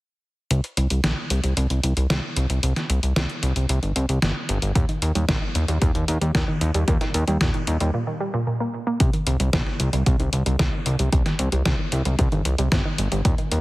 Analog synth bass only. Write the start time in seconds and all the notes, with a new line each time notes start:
0.51 C2
0.77 C2
0.91 C2
1.04 A#1
1.30 C2
1.44 C2
1.57 C2
1.70 C2
1.83 C2
1.97 C2
2.10 C2
2.37 C2
2.50 C2
2.63 C2
2.90 C2
3.03 C2
3.16 C2
3.43 C2
3.56 C2
3.69 C2
3.83 G1
3.96 C2
4.09 C2
4.22 G1
4.49 G1
4.62 G1
4.75 D#2
5.02 D#2
5.15 D#2
5.29 A#1
5.55 D#2
5.68 D#2
5.82 D#2
5.95 D#2
6.08 D#2
6.21 D#2
6.35 D#2
6.61 D#2
6.74 D#2
6.88 D#2
7.14 D#2
7.28 D#2
7.41 D#2
7.67 D#2
7.81 D#2
9.00 C2
9.27 C2
9.40 C2
9.53 A#1
9.80 C2
9.93 C2
10.06 C2
10.20 C2
10.33 C2
10.46 C2
10.59 C2
10.86 C2
10.99 C2
11.13 C2
11.39 C2
11.53 C2
11.66 C2
11.92 C2
12.06 C2
12.19 C2
12.32 G1
12.45 C2
12.59 C2
12.72 G1
12.98 G1
13.12 G1
13.25 D#2
13.51 D#2